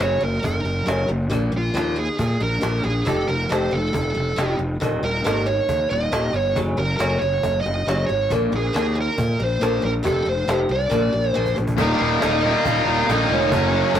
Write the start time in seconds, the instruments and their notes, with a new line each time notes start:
0.00 fingered electric bass F#1, steel-string acoustic guitar F#2 C#3 F#3, lead electric guitar C#5, cajon slap
0.21 fingered electric bass F#1, steel-string acoustic guitar F#2 C#3, lead electric guitar A#4
0.42 fingered electric bass F#1, steel-string acoustic guitar F#2 C#3, lead electric guitar A#4, cajon bass
0.64 fingered electric bass F#1, steel-string acoustic guitar F#2 C#3
0.86 fingered electric bass F#1, steel-string acoustic guitar F#2 C#3 F#3, cajon slap
1.08 fingered electric bass F#1, steel-string acoustic guitar F#2 C#3
1.30 fingered electric bass A#1, steel-string acoustic guitar A#2 F3 A#3, cajon bass
1.51 fingered electric bass A#1, steel-string acoustic guitar A#2 F3
1.58 lead electric guitar F4
1.74 fingered electric bass D#2, steel-string acoustic guitar A#2 F3 A#3, cajon slap
1.78 lead electric guitar F4
1.96 steel-string acoustic guitar A#2 F3, lead electric guitar G#4
2.18 steel-string acoustic guitar A#2 F3, fingered electric bass A#2, cajon bass
2.40 fingered electric bass A#1, steel-string acoustic guitar A#2 F3, lead electric guitar A#4
2.61 fingered electric bass A#1, steel-string acoustic guitar A#2 F3 A#3, cajon slap
2.83 fingered electric bass A#1, steel-string acoustic guitar A#2 F3, lead electric guitar G#4
3.05 fingered electric bass F1, steel-string acoustic guitar F2 C3 F3, lead electric guitar A4, cajon bass
3.28 fingered electric bass F1, steel-string acoustic guitar F2 C3, lead electric guitar A#4
3.49 fingered electric bass F1, steel-string acoustic guitar F2 C3 F3, lead electric guitar C5, cajon slap
3.71 fingered electric bass F1, steel-string acoustic guitar F2 C3, lead electric guitar A4
3.93 fingered electric bass F1, steel-string acoustic guitar F2 C3, lead electric guitar A4, cajon bass
4.15 fingered electric bass F1, steel-string acoustic guitar F2 C3
4.36 fingered electric bass F1, steel-string acoustic guitar F2 C3 F3, cajon slap
4.59 fingered electric bass F1, steel-string acoustic guitar F2 C3
4.80 fingered electric bass D#1, steel-string acoustic guitar D#2 A#2 D#3, cajon bass
5.03 fingered electric bass D#1, steel-string acoustic guitar D#2 A#2, lead electric guitar A#4
5.24 fingered electric bass G#1, steel-string acoustic guitar D#2 A#2 D#3, lead electric guitar A#4, cajon slap
5.46 steel-string acoustic guitar D#2 A#2, lead electric guitar C#5
5.68 fingered electric bass D#2, steel-string acoustic guitar D#2 A#2, cajon bass
5.90 fingered electric bass D#1, steel-string acoustic guitar D#2 A#2, lead electric guitar D#5
6.12 fingered electric bass D#1, steel-string acoustic guitar D#2 A#2 D#3, cajon slap
6.33 fingered electric bass G1, steel-string acoustic guitar D#2 A#2, lead electric guitar C#5
6.56 fingered electric bass F#1, steel-string acoustic guitar F#2 C#3 F#3, cajon bass
6.77 fingered electric bass F#1, steel-string acoustic guitar F#2 C#3, lead electric guitar A#4
6.97 fingered electric bass F#1, steel-string acoustic guitar F#2 C#3 F#3, lead electric guitar A#4, cajon slap
7.18 fingered electric bass F#1, steel-string acoustic guitar F#2 C#3, lead electric guitar C#5
7.43 fingered electric bass F#1, steel-string acoustic guitar F#2 C#3, cajon bass
7.61 lead electric guitar D#5
7.65 fingered electric bass F#1, steel-string acoustic guitar F#2 C#3
7.87 fingered electric bass F#1, steel-string acoustic guitar F#2 C#3 F#3, cajon slap
8.07 fingered electric bass G#1, steel-string acoustic guitar F#2 C#3, lead electric guitar C#5
8.30 fingered electric bass A#1, steel-string acoustic guitar A#2 F3 A#3, cajon bass
8.52 fingered electric bass A#1, steel-string acoustic guitar A#2 F3
8.56 lead electric guitar G#4
8.73 fingered electric bass D#2, steel-string acoustic guitar A#2 F3 A#3, lead electric guitar G#4, cajon slap
8.95 steel-string acoustic guitar A#2 F3
9.01 lead electric guitar A#4
9.18 steel-string acoustic guitar A#2 F3, fingered electric bass A#2, cajon bass
9.39 fingered electric bass A#1, steel-string acoustic guitar A#2 F3, lead electric guitar C5
9.61 fingered electric bass A#1, steel-string acoustic guitar A#2 F3 A#3, cajon slap
9.82 fingered electric bass A#1, steel-string acoustic guitar A#2 F3, lead electric guitar A#4
10.03 fingered electric bass F1, steel-string acoustic guitar F2 C3 F3, cajon bass
10.07 lead electric guitar A4
10.25 fingered electric bass F1, steel-string acoustic guitar F2 C3, lead electric guitar C5
10.48 fingered electric bass F1, steel-string acoustic guitar F2 C3 F3, lead electric guitar C5, cajon slap
10.69 fingered electric bass C2, steel-string acoustic guitar F2 C3, lead electric guitar D5
10.90 fingered electric bass A#1, steel-string acoustic guitar A#2 F3 A#3, cajon bass
11.13 fingered electric bass A#1, steel-string acoustic guitar A#2 F3
11.31 steel-string acoustic guitar A#2 F3, lead electric guitar C5, cajon slap
11.36 fingered electric bass A#1, steel-string acoustic guitar A#3
11.46 cajon bass
11.56 fingered electric bass A#1, steel-string acoustic guitar A#2 F3, cajon slap
11.67 cajon bass
11.77 fingered electric bass D#1, distorted electric guitar D#2 A#2 D#3 G3 A#3, cajon bass
11.81 lead electric guitar A#3 A#4, distorted electric guitar D#4
12.00 fingered electric bass D#1, distorted electric guitar D#3 G3 A#3 D#4, cajon slap
12.22 fingered electric bass D#1, distorted electric guitar D#3 G3 A#3 D#4, lead electric guitar D#4 D#5, cajon slap
12.44 distorted electric guitar D#3 G3 A#3 D#4, lead electric guitar F4 F5, cajon slap
12.65 fingered electric bass D#1, distorted electric guitar D#2 A#2 D#3 G3 A#3 D#4, cajon bass
12.86 fingered electric bass D#1, distorted electric guitar D#3 G3 A#3 D#4, cajon slap
13.07 fingered electric bass A#1, distorted electric guitar D#2 A#2 D#3 G3 A#3, cajon slap
13.11 lead electric guitar D#4 D#5, distorted electric guitar D#4
13.29 fingered electric bass F1, distorted electric guitar D#3 G3 A#3 D#4, lead electric guitar C#4, cajon slap
13.34 lead electric guitar C#5
13.52 fingered electric bass F#1, distorted electric guitar F#2 C#3 F#3 A#3 C#4 F#4, cajon bass
13.74 distorted electric guitar F#3 A#3 C#4 F#4, cajon slap
13.94 fingered electric bass F#1, distorted electric guitar F#3 A#3, cajon slap